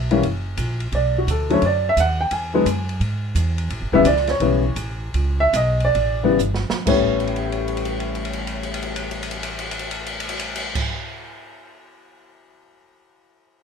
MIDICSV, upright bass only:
0, 0, Header, 1, 3, 480
1, 0, Start_track
1, 0, Tempo, 347625
1, 1277, Time_signature, 4, 2, 24, 8
1, 6080, Tempo, 371058
1, 7040, Tempo, 405132
1, 8000, Tempo, 459418
1, 8960, Tempo, 497100
1, 15483, End_track
2, 0, Start_track
2, 0, Title_t, "Upright bass"
2, 0, Program_c, 0, 32
2, 0, Note_on_c, 0, 35, 84
2, 300, Note_off_c, 0, 35, 0
2, 309, Note_on_c, 0, 30, 73
2, 779, Note_off_c, 0, 30, 0
2, 791, Note_on_c, 0, 34, 80
2, 1259, Note_off_c, 0, 34, 0
2, 1272, Note_on_c, 0, 35, 77
2, 1740, Note_off_c, 0, 35, 0
2, 1754, Note_on_c, 0, 38, 82
2, 2220, Note_off_c, 0, 38, 0
2, 2241, Note_on_c, 0, 42, 75
2, 2703, Note_off_c, 0, 42, 0
2, 2718, Note_on_c, 0, 39, 89
2, 3181, Note_off_c, 0, 39, 0
2, 3194, Note_on_c, 0, 40, 77
2, 3658, Note_off_c, 0, 40, 0
2, 3669, Note_on_c, 0, 42, 86
2, 4135, Note_off_c, 0, 42, 0
2, 4148, Note_on_c, 0, 44, 78
2, 4614, Note_off_c, 0, 44, 0
2, 4625, Note_on_c, 0, 40, 87
2, 5091, Note_off_c, 0, 40, 0
2, 5107, Note_on_c, 0, 33, 73
2, 5260, Note_on_c, 0, 31, 58
2, 5281, Note_off_c, 0, 33, 0
2, 5415, Note_off_c, 0, 31, 0
2, 5424, Note_on_c, 0, 28, 65
2, 5576, Note_off_c, 0, 28, 0
2, 5586, Note_on_c, 0, 37, 88
2, 6062, Note_off_c, 0, 37, 0
2, 6076, Note_on_c, 0, 35, 77
2, 6530, Note_off_c, 0, 35, 0
2, 6538, Note_on_c, 0, 33, 81
2, 7017, Note_off_c, 0, 33, 0
2, 7035, Note_on_c, 0, 37, 76
2, 7490, Note_off_c, 0, 37, 0
2, 7497, Note_on_c, 0, 35, 87
2, 7979, Note_off_c, 0, 35, 0
2, 7993, Note_on_c, 0, 33, 73
2, 8445, Note_off_c, 0, 33, 0
2, 8456, Note_on_c, 0, 31, 87
2, 8757, Note_off_c, 0, 31, 0
2, 8956, Note_on_c, 0, 33, 84
2, 12740, Note_off_c, 0, 33, 0
2, 15483, End_track
3, 0, Start_track
3, 0, Title_t, "Muted upright bass strokes"
3, 8780, Note_on_c, 9, 29, 35
3, 8884, Note_off_c, 9, 29, 0
3, 15483, End_track
0, 0, End_of_file